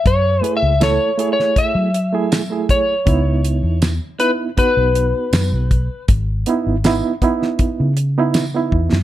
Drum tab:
HH |x-x-x-x-x-x-x-x-|x-x-x-x-x-x-x-x-|x-x-x-x-x-x-x---|
TB |----x-------x---|----x-------x---|----x-------x---|
SD |----o--o----o---|----o-------o---|----o--o----o--o|
BD |o-------o-----o-|o-------o-----o-|o-----o-o-----o-|